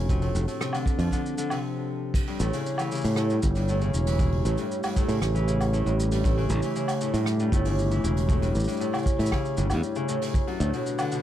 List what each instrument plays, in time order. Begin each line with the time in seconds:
Already playing: fingered electric bass F1, harp C#3
0.09 harp C3, ambient pad F3 C4 D4 A4, kick, shaker
0.22 harp A2, open hi-hat, shaker
0.35 fingered electric bass F1, shaker
0.48 harp A2, open hi-hat, shaker
0.60 harp C3, cross-stick, shaker
0.73 harp D3, open hi-hat, low woodblock, shaker
0.86 kick, shaker
0.99 fingered electric bass F2, harp F3, open hi-hat, shaker
1.11 harp D3, kick, shaker
1.26 shaker
1.38 harp D3, shaker
1.50 harp C3, open hi-hat, low woodblock, shaker
2.14 ambient pad A3 E4 G4 C#5, kick, crash, shaker
2.27 harp G2, open hi-hat
2.40 fingered electric bass A1, harp A2, shaker
2.53 harp C#3, open hi-hat, shaker
2.66 shaker
2.78 harp E3, open hi-hat, low woodblock, shaker
2.91 harp C#3, shaker
2.95 shaker
2.98 shaker
3.01 open hi-hat, shaker
3.04 fingered electric bass A2, shaker
3.07 shaker
3.11 shaker
3.14 cross-stick, shaker
3.17 harp A2, shaker
3.30 harp G2, shaker
3.42 fingered electric bass G1, kick, shaker
3.55 harp G2, open hi-hat, shaker
3.68 harp A2, shaker
3.81 harp C#3, shaker
3.94 fingered electric bass E1, shaker
4.07 harp E3, open hi-hat, shaker
4.19 harp C#3, kick, shaker
4.32 open hi-hat
4.45 fingered electric bass A1, harp A2, shaker
4.58 harp G2, open hi-hat, shaker
4.71 shaker
4.83 harp G2, open hi-hat, low woodblock, shaker
4.96 harp A2, kick, shaker
5.09 fingered electric bass A2, harp C#3, open hi-hat, shaker
5.22 fingered electric bass A1, cross-stick, shaker
5.35 harp E3, shaker
5.48 harp C#3, shaker
5.60 open hi-hat, low woodblock, shaker
5.73 harp A2, shaker
5.86 fingered electric bass A1, harp G2, shaker
6.00 shaker
6.11 harp G2, open hi-hat, shaker
6.24 harp A2, kick, shaker
6.37 harp C#3, open hi-hat
6.50 fingered electric bass A1, shaker
6.62 harp E3, open hi-hat, shaker
6.76 harp C#3, shaker
6.88 open hi-hat, low woodblock, shaker
7.01 harp A2, shaker
7.14 harp G2, fingered electric bass A2, open hi-hat, shaker
7.26 cross-stick, shaker
7.40 harp G2, shaker
7.52 fingered electric bass G1, harp A2, kick, shaker
7.65 harp C#3, open hi-hat, shaker
7.79 shaker
7.91 harp E3, shaker
8.04 fingered electric bass E1, harp C#3, shaker
8.17 open hi-hat, shaker
8.29 harp A2, kick, shaker
8.42 harp G2, open hi-hat, shaker
8.55 fingered electric bass A1, shaker
8.60 shaker
8.64 harp G2, open hi-hat, shaker
8.68 shaker
8.72 shaker
8.77 harp A2, shaker
8.81 shaker
8.93 harp C#3, open hi-hat, low woodblock, shaker
8.99 shaker
9.03 kick, shaker
9.07 shaker
9.19 fingered electric bass A2, harp E3, open hi-hat, shaker
9.26 shaker
9.31 harp C#3, kick, cross-stick, low woodblock
9.45 shaker
9.57 fingered electric bass G1, harp G2, shaker
9.70 fingered electric bass E2, harp G2, open hi-hat, low woodblock, shaker
9.83 shaker
9.95 harp C#3, shaker
10.08 harp A2, shaker
10.21 harp C#3, open hi-hat, shaker
10.24 open hi-hat
10.27 open hi-hat
10.30 open hi-hat
10.32 ambient pad D3 D4 F#4 B4, synth texture F#4 F#5, kick, open hi-hat, shaker
10.47 harp F#2, open hi-hat
10.60 fingered electric bass D2, harp A2, shaker
10.73 harp B2, open hi-hat, shaker
10.86 shaker
10.98 harp D3, open hi-hat, low woodblock, shaker
11.12 harp B2, shaker